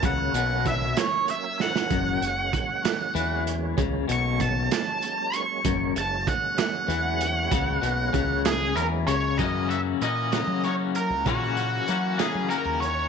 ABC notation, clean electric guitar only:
X:1
M:6/8
L:1/8
Q:3/8=64
K:F#mix
V:1 name="Clean electric guitar" clef=bass
C, B,,2 z3 | F,, F,, z2 E,2 | C, B,,2 z3 | F,, F,, z2 E,2 |
C, B,, C,2 E, C, | [F,,C,E,A,CF] [E,A,CF] [E,A,CF] [F,,C,E,A,CF] [E,A,CF]2 | [F,,C,E,A,CF] [E,A,CF] [E,A,CF] [F,,C,E,A,CF] [E,A,CF]2 |]